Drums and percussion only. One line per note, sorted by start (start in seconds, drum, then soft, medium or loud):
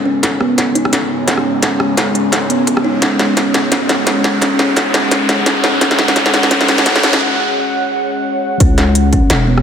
0.23 kick loud
0.23 snare medium
0.23 closed hi-hat medium
0.41 cross-stick medium
0.58 kick loud
0.58 snare medium
0.58 closed hi-hat medium
0.75 closed hi-hat soft
0.85 cross-stick medium
0.93 kick medium
0.93 snare medium
0.93 closed hi-hat medium
1.28 kick loud
1.28 snare medium
1.28 closed hi-hat medium
1.38 cross-stick medium
1.62 kick loud
1.62 snare medium
1.62 closed hi-hat medium
1.80 cross-stick medium
1.97 kick medium
1.97 snare medium
1.97 closed hi-hat medium
2.15 closed hi-hat soft
2.32 kick medium
2.32 cross-stick soft
2.32 snare medium
2.32 closed hi-hat medium
2.50 closed hi-hat soft
2.67 kick loud
2.67 closed hi-hat medium
2.77 cross-stick medium
3.02 kick loud
3.02 snare medium
3.02 closed hi-hat medium
3.19 snare medium
3.37 kick medium
3.37 snare medium
3.37 closed hi-hat medium
3.54 snare medium
3.54 closed hi-hat soft
3.72 kick medium
3.72 snare medium
3.72 closed hi-hat medium
3.89 snare medium
3.89 closed hi-hat soft
4.07 kick loud
4.07 snare medium
4.07 closed hi-hat medium
4.24 snare medium
4.41 kick loud
4.41 snare medium
4.41 closed hi-hat medium
4.59 snare medium
4.76 kick medium
4.76 snare medium
4.76 closed hi-hat medium
4.94 snare medium
4.94 closed hi-hat soft
5.11 kick loud
5.11 snare medium
5.11 closed hi-hat medium
5.29 snare medium
5.29 closed hi-hat soft
5.46 kick loud
5.46 snare medium
5.46 closed hi-hat medium
5.64 snare medium
5.81 kick loud
5.81 snare loud
5.81 closed hi-hat medium
5.91 snare medium
5.99 snare loud
6.08 snare medium
6.16 kick medium
6.16 snare medium
6.16 closed hi-hat medium
6.26 snare medium
6.34 snare loud
6.34 closed hi-hat soft
6.43 snare medium
6.51 kick loud
6.51 snare loud
6.51 closed hi-hat medium
6.61 snare medium
6.68 snare loud
6.68 closed hi-hat soft
6.78 snare medium
6.86 kick loud
6.86 snare loud
6.86 closed hi-hat medium
6.96 snare loud
7.03 snare loud
7.13 snare medium
8.60 kick loud
8.60 closed hi-hat medium
8.78 snare medium
8.78 closed hi-hat soft
8.95 closed hi-hat medium
9.13 kick medium
9.13 closed hi-hat soft
9.30 snare loud
9.30 closed hi-hat medium
9.58 cross-stick medium